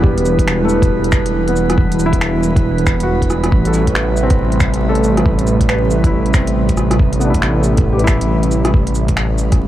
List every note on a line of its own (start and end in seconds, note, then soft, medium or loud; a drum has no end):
0.00 3.50 E1 medium
0.00 3.47 E3 medium
0.00 9.68 G3 medium
0.00 1.06 G3 medium
0.00 0.86 B3 medium
0.00 9.68 B3 medium
0.00 3.53 D4 medium
0.00 3.47 E4 medium
0.00 3.47 B4 medium
0.00 9.68 B4 medium
0.00 kick loud
0.18 closed hi-hat soft
0.25 cabasa medium
0.39 kick medium
0.39 closed hi-hat medium
0.48 finger snap loud
0.65 1.69 A3 medium
0.69 cabasa medium
0.82 kick loud
0.82 closed hi-hat medium
1.04 closed hi-hat soft
1.12 finger snap loud
1.12 kick loud
1.12 cabasa medium
1.26 closed hi-hat medium
1.48 2.55 B3 medium
1.48 closed hi-hat soft
1.56 cabasa medium
1.70 cross-stick medium
1.70 closed hi-hat medium
1.78 kick loud
1.92 closed hi-hat soft
1.99 cabasa medium
2.06 3.10 E4 medium
2.13 kick medium
2.13 closed hi-hat medium
2.21 finger snap loud
2.43 cabasa medium
2.56 kick loud
2.56 closed hi-hat medium
2.78 closed hi-hat soft
2.87 finger snap loud
2.87 kick loud
2.87 cabasa medium
3.00 3.69 F#4 medium
3.00 closed hi-hat medium
3.22 kick medium
3.22 closed hi-hat soft
3.30 cross-stick soft
3.30 cabasa medium
3.43 cross-stick medium
3.43 closed hi-hat medium
3.52 9.68 A1 medium
3.52 9.68 C3 medium
3.52 9.68 A3 medium
3.52 kick loud
3.65 4.71 A4 medium
3.65 closed hi-hat soft
3.74 cabasa medium
3.87 kick medium
3.87 closed hi-hat medium
3.95 finger snap loud
4.17 cabasa medium
4.23 5.28 C4 medium
4.30 kick loud
4.30 closed hi-hat medium
4.52 closed hi-hat soft
4.60 finger snap loud
4.60 kick loud
4.60 cabasa medium
4.74 closed hi-hat medium
4.89 5.93 A4 medium
4.95 closed hi-hat soft
5.04 cabasa medium
5.17 cross-stick medium
5.17 closed hi-hat medium
5.26 kick loud
5.39 closed hi-hat soft
5.47 cabasa medium
5.61 kick medium
5.61 closed hi-hat medium
5.69 6.74 B4 medium
5.69 finger snap loud
5.91 cabasa medium
6.04 7.11 E4 medium
6.04 kick loud
6.04 closed hi-hat medium
6.26 closed hi-hat soft
6.34 7.39 C4 medium
6.34 finger snap loud
6.34 kick loud
6.34 cabasa medium
6.47 closed hi-hat medium
6.69 kick medium
6.69 closed hi-hat soft
6.77 cross-stick medium
6.77 cabasa medium
6.91 cross-stick medium
6.91 closed hi-hat medium
6.99 kick loud
7.13 closed hi-hat soft
7.20 8.25 B3 medium
7.20 cabasa medium
7.25 8.27 D4 medium
7.30 8.03 E4 medium
7.34 kick medium
7.34 closed hi-hat medium
7.42 finger snap medium
7.61 8.65 A4 medium
7.61 cabasa medium
7.77 kick loud
7.77 closed hi-hat medium
7.93 8.97 G4 medium
7.97 9.00 B4 medium
7.97 closed hi-hat soft
8.04 9.09 E4 medium
8.04 finger snap loud
8.04 cabasa medium
8.08 kick loud
8.21 closed hi-hat medium
8.43 closed hi-hat soft
8.51 cabasa medium
8.65 cross-stick medium
8.65 closed hi-hat medium
8.74 kick loud
8.87 closed hi-hat soft
8.95 cabasa medium
9.08 kick medium
9.08 closed hi-hat medium
9.17 finger snap loud
9.38 cabasa medium
9.52 kick loud
9.52 cross-stick soft
9.52 closed hi-hat medium